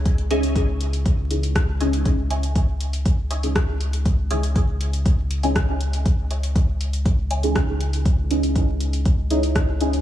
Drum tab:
HH |xxxxx-xxx-xxx-xx|x-xxx-xxx-xxx-xx|x-xxx-xxx-xxx-xx|x-xxx-xxx-xxx-xx|
SD |------------r---|------------r---|------------r---|------------r---|
BD |o---o---o---o---|o---o---o---o---|o---o---o---o---|o---o---o---o---|

HH |x-xxx-xxx-xxx-xx|
SD |------------r---|
BD |o---o---o---o---|